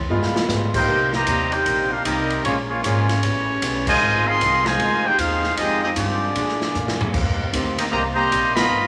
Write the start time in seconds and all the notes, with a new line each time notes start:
0.08 G2 G3 G#3 B3 F4 G#4
0.23 snare
0.35 muted upright bass stroke, snare
0.48 G#2 G3 B3 F4 G#4, snare, hi-hat pedal
0.73 A#3 D#4 G4 A#4 C5 G5, kick, crash
0.87 C2 C3 A#3 D#4 G4, kick
1.13 D#3 G3 A#3 G4 C5 D#5 A#5, snare
1.26 D#2 C3 A#3 D#4 G4, kick, hi-hat pedal, ride
1.52 A#3 D#4 G4 A#4 C5 G5, ride
1.65 A#1 C3 A#3 D#4 G4, kick, ride
1.90 D4 F4 G4 A#4 F5
2.05 C2 C3 G3 A#3 C4 D#4 G4 A#4 D#5, kick, hi-hat pedal, ride
2.30 ride
2.43 A#1 A#2 C#3 F3 G#3 A#3 C#4 F4 G#4 C#5, kick, ride
2.69 F3 G#3 A#3 C#4 F4 G#4 C#5
2.82 G#1 A#2 F3 G#3 A#3 C#4 F4 G#4 C#5, kick, hi-hat pedal, ride
3.09 snare, ride
3.22 A1 A2 G3 A3 B3 C#4 G4, kick, ride
3.62 B1 A2 G3 B3 C#4, kick, hi-hat pedal, ride
3.87 D#3 F3 G#3 F4 C5 D#5 G#5, kick, crash
4.00 G#1 G#2 F3 C4 D#4 F4
4.26 D#3 F3 C4 G#4 D#5 F5 C6
4.40 C2 G#2 F3 C4 D#4, kick, hi-hat pedal, ride
4.66 D#3 F3 G#3 F4 C5 D#5 G#5, snare, ride
4.79 D2 G#2 F3 C4 D#4, kick, ride
5.05 D#4 G4 G#4 C5 G5
5.18 D#2 G#2 F3 C4 D#4 F4 G#4 C5 F5, kick, hi-hat pedal, ride
5.43 snare
5.57 F2 D#3 F3 G#3 C4 D#4 F4 G4 G#4 D#5, kick, ride
5.83 G#3 C4 D#4 G4 G#4 D#5
5.96 G2 D#3 F3 G#3 C4 D4 D#4 G4 G#4 D5, kick, hi-hat pedal, ride
6.35 A#2 D3 G#3 A#3 D4 F#4 G#4, kick, ride
6.49 snare
6.61 snare
6.74 F#2 A#2 G#3 D4 F#4, hi-hat pedal
6.88 snare
7.01 floor tom
7.13 D#2 D#3 A#3 C4 D#4 G4, kick, crash
7.53 D2 D#3 A#3 C4 G4, kick, hi-hat pedal, ride
7.78 A#3 C4 D#4 G4 A#4 D#5, ride
7.91 C2 C3 D#3 G3 A#3 C4 G4 C5 D#5 A#5, kick
8.14 C3 G3 A#3 G4 C5 D#5 A#5
8.31 A#1 D#3 A#3 C4 G4, kick, hi-hat pedal, ride
8.54 D#3 F3 B3 F4 D#5 A#5 B5, snare, ride
8.70 G1 G2 D#3 F3 G3 B3 D#4 F4